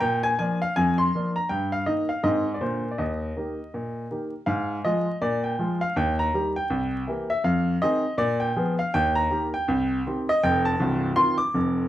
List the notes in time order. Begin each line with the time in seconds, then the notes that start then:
0.00 A#2 G5
0.23 G#5
0.39 F3 A#3 D4 G#5
0.62 F5
0.76 F2 G#5
0.98 C6
1.15 F3 A#3 D4
1.36 A#5
1.49 G2 G5
1.72 F5
1.86 D#3 A#3 D#4 D#5
2.09 F5
2.23 G#2 D#3 C4 D#4 D#5
2.54 D5
2.61 A#2 D3 A#3 F4 C5
2.91 D5
2.98 D#2 D#5
3.36 D#3 A#3 G4
3.74 A#2
4.11 D#3 A#3 G4
4.46 G#2 F5
4.85 F3 G#3 F4 D#5
5.22 A#2 D5
5.44 G5
5.59 F3 G#3 F4
5.81 F5
5.96 D#2 G5
6.19 A#5
6.34 D#3 G3 G4
6.56 G5
6.70 C2
7.07 E3 A#3 G4
7.30 E5
7.44 F2 F5
7.82 D#3 C4 G#4 D#5
8.18 A#2 D5
8.40 G5
8.56 F3 B3 G#4
8.79 F5
8.94 D#2 G5
9.15 A#5
9.30 D#3 A#3 G4
9.54 G5
9.68 C2
10.07 D#3 C4 G4
10.29 D#5
10.43 F1 F2 G5
10.65 A5
10.80 C1 C2
11.16 D#3 C4 F4 C6
11.38 D6
11.54 F1 F2